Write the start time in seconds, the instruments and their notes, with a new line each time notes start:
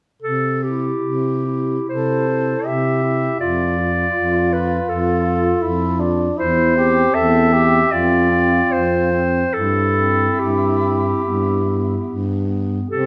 0.22 baritone saxophone C3, clarinet A4
0.63 clarinet E4 G4
1.04 baritone saxophone C3
1.46 clarinet E4
1.87 baritone saxophone C3, tenor saxophone A4, clarinet C5
2.29 clarinet E4
2.65 baritone saxophone C3, tenor saxophone G4, clarinet E5
3.04 clarinet E4
3.40 baritone saxophone F2, tenor saxophone F4, clarinet F4 D5
3.79 clarinet F4
4.15 baritone saxophone F2
4.52 clarinet F4 B4
4.88 baritone saxophone F2, clarinet A4
5.24 clarinet F4
5.61 baritone saxophone F2, tenor saxophone E4
5.99 tenor saxophone D4, clarinet F4
6.38 baritone saxophone E2, tenor saxophone E4, clarinet C5
6.75 clarinet C4, tenor saxophone G4
7.14 baritone saxophone E2, tenor saxophone A4, clarinet E5
7.51 clarinet C4, tenor saxophone G4
7.90 baritone saxophone F2, clarinet C4 D5, tenor saxophone F4
8.30 clarinet C4
8.71 baritone saxophone F2, clarinet C5
9.11 clarinet C4
9.53 baritone saxophone G2, tenor saxophone E4, clarinet A4
9.95 clarinet C4
10.38 baritone saxophone G2, clarinet G4
10.82 clarinet C4
11.23 baritone saxophone G2, clarinet B3
11.65 clarinet B3
12.07 baritone saxophone G2
12.48 clarinet B3
12.90 baritone saxophone C3, tenor saxophone C4, clarinet G4 A4